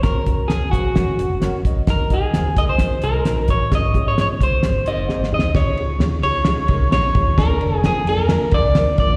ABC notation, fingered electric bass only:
X:1
M:4/4
L:1/16
Q:1/4=131
K:Db
V:1 name="Fingered electric bass" clef=bass
G,,,2 D,,3 z B,,, B,,,2 z G,,, F,,, G,,, z A,,, =G,,, | G,,,4 E,,2 D,,2 z2 C,,2 B,,,2 =A,,,2 | A,,,2 A,,3 z D,, D,, A,,,2 z G,,, z A,,, E,, =D,, | D,,4 E,,2 D,,2 z2 C,,2 B,,,2 E,,2 |
=D,,2 F,,,3 z F,, F,,2 z D,, C,, D,, z F,, _F,, |]